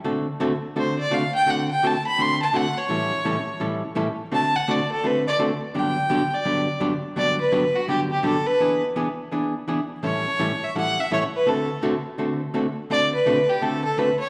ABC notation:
X:1
M:4/4
L:1/16
Q:"Swing" 1/4=168
K:G
V:1 name="Fiddle"
z8 c2 d2 =f2 g2 | f2 g2 a2 b2 c'2 a2 f2 ^c2- | ^c8 z8 | a2 f2 d2 A2 B2 d2 z4 |
g6 d6 z4 | d2 B4 F2 G2 G2 A2 B2- | B2 z12 z2 | ^c6 e2 f2 e2 c2 B2 |
A4 z12 | d2 B4 G2 A2 A2 B2 ^c2 |]
V:2 name="Hollow-body jazz guitar"
[D,A,CFA]2 z2 [D,A,CFA] z3 [D,A,CFA]2 z2 [D,A,CFA] z3 | [D,A,CFA]2 z2 [D,A,CFA] z3 [D,A,CFA]2 z2 [D,A,CFA] z3 | [A,,E,G,^CEA]2 z2 [A,,E,G,CEA] z3 [A,,E,G,CEA]2 z2 [A,,E,G,CEA] z3 | [D,A,CFA]2 z2 [D,A,CFA] z3 [D,A,CFA]2 z2 [D,A,CFA] z3 |
[G,,D,F,B,DG]2 z2 [G,,D,F,B,DG] z3 [G,,D,F,B,DG]2 z2 [G,,D,F,B,DG] z3 | [G,,D,F,B,DG]2 z2 [G,,D,F,B,DG] z3 [G,,D,F,B,DG]2 z2 [G,,D,F,B,DG] z3 | [E,B,D^G]2 z2 [E,B,DG] z3 [E,B,DG]2 z2 [E,B,DG] z3 | [A,,E,G,^CEA]2 z2 [A,,E,G,CEA] z3 [A,,E,G,CEA]2 z2 [A,,E,G,CEA] z3 |
[D,A,CFA]2 z2 [D,A,CFA] z3 [D,A,CFA]2 z2 [D,A,CFA] z3 | [D,A,CFA]2 z2 [D,A,CFA] z3 [D,A,CFA]2 z2 [D,A,CFA] z3 |]